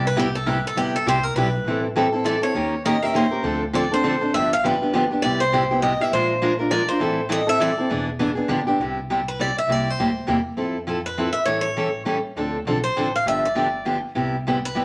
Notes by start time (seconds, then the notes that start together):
Already playing: C2
0.07 B4
0.16 C3 G3 B3 E4 G4
0.35 A4
0.46 C3 G3 B3 E4 G4 B4
0.67 A4
0.76 G1 C3 G3 B3 E4 G4
0.96 A4
1.06 C2 C3 G3 B3 E4 G4 C5
1.23 A#4
1.34 B1 C3 G3 B3 E4 G4 B4
1.64 A1 E3 G3 C4 E4 A4
1.96 E3 G3 C4 E4 A4
2.12 C4 E4 A4
2.24 E3 G3 C4 E4 A4 D5
2.42 C4 E4 A4 C#5
2.54 D#2 D#3 A#3 C#4 G4 A#4
2.85 D#3 A#3 C#4 G4 A#4 D#5
3.03 C#4 G4 A#4 E5
3.14 D#3 A#3 C#4 G4 A#4 C5
3.31 C#4 G4 A#4
3.43 D2 D3 F3 C4 D4 A4
3.73 D3 F3 C4 D4 A4 D5
3.91 C4 D4 A4 C5
4.03 D3 F3 C4 D4 A4
4.21 C4 D4 A4
4.34 G1 D3 F3 B3 D4 G4 E5
4.53 F5
4.64 D3 F3 B3 D4 G4 B4
4.82 B3 D4 G4
4.93 D3 F3 B3 D4 G4
5.11 B3 D4 G4
5.22 C2 C3 G3 B3 E4 G4 D5
5.40 C5
5.52 C3 G3 B3 E4 G4
5.71 B3 E4 G4
5.82 C3 G3 B3 E4 G4 D#5
6.00 B3 E4 G4 E5
6.12 A#1 F3 G#3 D4 F4 A#4 C5
6.42 F3 G#3 D4 F4 A#4
6.59 D4 F4 A#4
6.71 F3 G#3 D4 F4 A#4 D5
6.88 D4 F4 A#4 C5
7.00 A1 E3 G3 C4 E4 A4
7.29 E3 G3 C4 E4 A4 D#5
7.47 C4 E4 A4 E5
7.60 E3 G3 C4 E4 A4 D5
7.78 C4 E4 A4
7.90 E1 E3 B3 D4 G#4
8.19 E3 B3 D4 G#4
8.35 B3 D4 G#4
8.48 G1 D3 F3 B3 D4 G4
8.67 B3 D4 G4
8.78 C2 C3 G3 B3 E4 G4
9.10 C3 G3 B3 E4 G4
9.28 B4
9.39 C3 G3 B3 E4 G4 D5
9.58 E5
9.67 C2 C3 G3 A#3 E4 G4
9.72 D5
9.90 C5
9.98 D2 C3 G3 A#3 E4 G4
10.27 E2 C3 G3 A#3 E4 G4
10.57 F2 F3 C4 E4 A4
10.87 F3 C4 E4 A4
11.06 B4
11.18 F3 C4 E4 A4
11.33 E5
11.46 A1 E3 G3 C#4 E4 A4 C#5
11.61 C#5
11.77 E3 G3 C#4 E4 A4
12.05 E3 G3 C#4 E4 A4
12.36 D2 D3 F3 C4 D4 A4
12.65 B1 D3 F3 C4 D4 A4
12.84 C5
12.96 A1 D3 F3 C4 D4 A4
13.16 F5
13.26 G1 D3 F3 B3 D4 G4 E5
13.45 D5
13.55 D3 F3 B3 D4 G4
13.85 D3 F3 B3 D4 G4
14.15 C2 C3 G3 B3 E4 G4
14.47 C3 G3 B3 E4 G4
14.65 B4
14.75 C3 G3 B3 E4 G4